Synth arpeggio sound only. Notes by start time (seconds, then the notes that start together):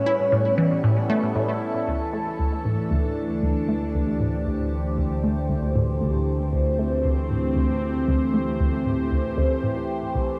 0.06 E4
0.32 A2
0.58 E3
0.84 A2
1.10 A3
1.36 A2
1.87 D2
2.13 A3
2.39 D2
2.65 A2
2.91 D2
3.43 D2
3.69 A3
3.95 D2
4.20 A2
4.46 D2
4.98 D2
5.24 A3
5.49 D2
5.75 A2
6.01 D2
6.53 D2
6.79 A3
7.05 D2
7.30 A2
7.56 D2
8.08 D2
8.34 A3
8.60 D2
8.86 A2
9.11 D2
9.37 D2
9.63 A2
10.15 C2